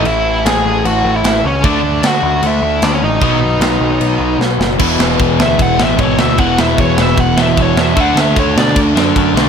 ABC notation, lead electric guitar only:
X:1
M:4/4
L:1/16
Q:1/4=151
K:Bmix
V:1 name="Lead electric guitar"
[Ee]4 [Gg]4 [Ff]3 [Ee]3 [Cc]2 | [=D=d]4 [Ff]4 [Ee]4 [Dd] [Cc] [^D^d]2- | [Dd]12 z4 | [K:Dlyd] z6 e2 f2 e2 c2 e2 |
f2 e2 c2 e2 f2 e2 c2 e2 | f2 e2 c2 d2 z8 |]